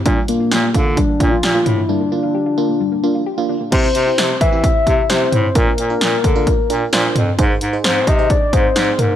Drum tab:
CC |--------|--------|x-------|--------|
HH |xxxxxxxx|--------|xxxxxxxx|xxxxxxxx|
SD |--o---o-|--------|--o---o-|--o---o-|
T2 |-------o|--------|-------o|-------o|
BD |o--ooo--|--------|o--ooo--|o--oo---|

CC |--------|
HH |xxxxxxxx|
SD |--o---o-|
T2 |-------o|
BD |o--ooo--|